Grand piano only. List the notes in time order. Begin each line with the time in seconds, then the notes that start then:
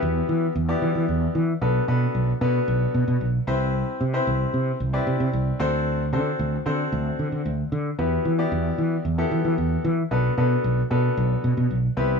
Already playing: B3 E4 F#4 G4 B4
0.69 B3 E4 F#4 G4 D5
1.61 B3 D4 F#4 A4 B4
1.88 B3 D4 F#4 A4 B4
2.41 B3 D4 F#4 A4 B4
3.47 C4 E4 G4 B4 C5
4.13 C4 E4 G4 B4 C5
4.93 C4 E4 G4 B4 D5
5.59 C4 D4 F#4 A4 C5
6.13 C4 D4 F#4 A4 C5
6.66 C4 D4 F#4 A4 C5
7.99 B3 E4 F#4 G4 B4
8.38 B3 E4 F#4 G4 D5
9.18 B3 E4 F#4 G4 A4
10.11 B3 D4 F#4 A4 B4
10.37 B3 D4 F#4 A4 B4
10.90 B3 D4 F#4 A4 B4
11.97 B3 C4 E4 G4 B4